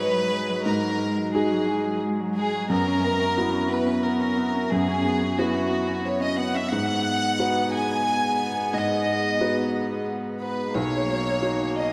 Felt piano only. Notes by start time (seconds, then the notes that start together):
Already playing: G#2 D#4 F#4 G#4
0.66 G#2
1.34 D#4 F#4 G#4
2.70 F#2
3.37 B3 E4 F#4
4.72 F#2
5.38 E4 F#4 B4
6.72 G#2
7.39 D#4 F#4 B4
8.73 G#2
9.40 D#4 F#4 B4
10.75 B1
11.42 D#4 F#4